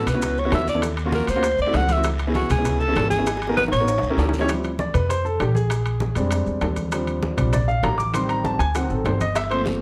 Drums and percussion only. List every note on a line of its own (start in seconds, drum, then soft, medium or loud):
0.07 high bongo soft
0.07 high conga soft
0.07 low conga medium
0.07 high timbale medium
0.07 short guiro medium
0.07 maracas medium
0.22 high bongo medium
0.22 high conga soft
0.22 high timbale medium
0.22 long guiro medium
0.22 maracas loud
0.37 high bongo soft
0.37 high conga soft
0.37 maracas soft
0.52 high bongo soft
0.52 low bongo medium
0.52 high conga medium
0.52 high timbale loud
0.52 low timbale medium
0.52 short guiro medium
0.52 maracas soft
0.67 high bongo soft
0.67 high conga medium
0.67 short guiro medium
0.67 maracas medium
0.82 high bongo medium
0.82 high conga soft
0.82 high timbale loud
0.82 long guiro medium
0.82 maracas medium
0.97 high conga soft
0.97 high timbale medium
0.97 maracas soft
1.12 high bongo medium
1.12 high conga medium
1.12 low timbale medium
1.12 short guiro medium
1.12 maracas soft
1.27 high bongo soft
1.27 high conga soft
1.27 high timbale medium
1.27 short guiro medium
1.27 maracas medium
1.43 high bongo medium
1.43 high conga soft
1.43 high timbale medium
1.43 long guiro medium
1.43 maracas medium
1.59 high bongo soft
1.59 high conga soft
1.59 maracas soft
1.74 high bongo soft
1.74 low bongo medium
1.74 high conga medium
1.74 high timbale medium
1.74 low timbale medium
1.74 short guiro medium
1.74 maracas soft
1.89 high bongo soft
1.89 high conga medium
1.89 high timbale medium
1.89 short guiro medium
1.89 maracas medium
2.03 high bongo medium
2.03 high conga soft
2.03 high timbale loud
2.03 long guiro medium
2.03 maracas medium
2.19 high conga soft
2.19 high timbale medium
2.19 maracas soft
2.34 high bongo medium
2.34 high conga medium
2.34 low timbale medium
2.34 short guiro medium
2.34 maracas soft
2.49 high bongo soft
2.49 high conga soft
2.49 low conga medium
2.49 high timbale medium
2.49 short guiro medium
2.49 maracas medium
2.65 high bongo medium
2.65 high conga soft
2.65 low conga medium
2.65 high timbale medium
2.65 long guiro medium
2.65 maracas loud
2.80 high bongo soft
2.80 high conga soft
2.80 maracas soft
2.95 high bongo soft
2.95 low bongo medium
2.95 high conga medium
2.95 high timbale loud
2.95 low timbale medium
2.95 short guiro medium
2.95 maracas soft
3.11 high bongo soft
3.11 high conga medium
3.11 short guiro medium
3.11 maracas medium
3.26 high bongo medium
3.26 high conga soft
3.26 high timbale medium
3.26 long guiro medium
3.26 maracas medium
3.37 high bongo medium
3.42 high conga soft
3.42 high timbale medium
3.42 maracas soft
3.47 high bongo medium
3.57 high bongo loud
3.57 high conga medium
3.57 low timbale medium
3.57 short guiro medium
3.57 maracas soft
3.68 low bongo loud
3.73 high timbale medium
3.73 short guiro medium
3.73 maracas medium
3.88 high conga soft
3.88 high timbale medium
3.88 long guiro medium
3.88 maracas medium
3.98 low bongo medium
3.98 high timbale medium
4.03 high conga soft
4.03 maracas soft
4.18 low bongo medium
4.18 high conga medium
4.18 low timbale loud
4.18 short guiro medium
4.18 maracas soft
4.29 low bongo medium
4.29 low timbale medium
4.33 high conga medium
4.33 short guiro medium
4.33 maracas medium
4.39 low bongo medium
4.39 low timbale medium
4.49 high bongo medium
4.49 high conga soft
4.49 high timbale medium
4.49 maracas medium
4.64 high conga soft
4.64 high timbale medium
4.64 maracas soft
4.79 high bongo medium
4.79 high conga medium
4.79 low timbale medium
4.79 maracas soft
4.94 high bongo soft
4.94 high conga soft
4.94 low conga medium
4.94 high timbale medium
4.94 maracas medium
5.10 high bongo medium
5.10 high conga soft
5.10 high timbale medium
5.10 maracas medium
5.25 high bongo soft
5.25 high conga soft
5.25 maracas soft
5.40 high bongo soft
5.40 low bongo medium
5.40 high conga medium
5.40 high timbale loud
5.40 low timbale medium
5.40 maracas soft
5.55 high bongo soft
5.55 high conga medium
5.55 maracas medium
5.70 high bongo medium
5.70 high conga soft
5.70 high timbale loud
5.70 maracas medium
5.86 high conga soft
5.86 high timbale medium
5.86 maracas soft
6.00 high bongo medium
6.00 high conga medium
6.00 low timbale medium
6.00 maracas soft
6.15 high conga soft
6.15 high timbale medium
6.15 maracas medium
6.31 high bongo medium
6.31 high conga soft
6.31 high timbale medium
6.31 maracas medium
6.46 high bongo soft
6.46 high conga soft
6.46 maracas soft
6.61 high bongo soft
6.61 low bongo medium
6.61 high conga medium
6.61 high timbale medium
6.61 low timbale medium
6.61 maracas soft
6.76 high bongo soft
6.76 high conga medium
6.76 high timbale medium
6.76 maracas medium
6.92 high bongo medium
6.92 high timbale loud
6.92 maracas medium
7.07 high conga soft
7.07 high timbale medium
7.07 maracas soft
7.22 high bongo medium
7.22 high conga medium
7.22 low timbale medium
7.22 maracas soft
7.38 high bongo soft
7.38 high conga soft
7.38 low conga medium
7.38 high timbale medium
7.38 maracas medium
7.53 high bongo medium
7.53 high conga soft
7.53 low conga medium
7.53 high timbale medium
7.53 maracas medium
7.68 high bongo soft
7.68 high conga soft
7.68 maracas soft
7.83 high bongo soft
7.83 low bongo medium
7.83 high conga medium
7.83 high timbale medium
7.83 low timbale medium
7.83 maracas soft
7.99 high bongo soft
7.99 high conga medium
7.99 maracas medium
8.14 high bongo medium
8.14 high conga soft
8.14 high timbale loud
8.14 maracas medium
8.29 high conga soft
8.29 high timbale medium
8.29 maracas soft
8.44 high bongo medium
8.44 high conga medium
8.44 low timbale medium
8.44 maracas soft
8.60 high bongo soft
8.60 high conga soft
8.60 high timbale medium
8.60 maracas medium
8.75 high bongo medium
8.75 high conga soft
8.75 high timbale medium
8.75 maracas medium
8.90 high bongo soft
8.90 high conga soft
8.90 maracas soft
9.05 high bongo soft
9.05 low bongo medium
9.05 high conga medium
9.05 high timbale medium
9.05 low timbale medium
9.05 maracas soft
9.20 high bongo soft
9.20 high conga medium
9.20 high timbale medium
9.20 maracas medium
9.35 high bongo medium
9.35 high conga soft
9.35 high timbale loud
9.35 long guiro medium
9.35 maracas medium
9.51 high conga soft
9.51 high timbale medium
9.51 maracas soft
9.66 high bongo medium
9.66 high conga medium
9.66 low timbale medium
9.66 short guiro medium
9.66 maracas soft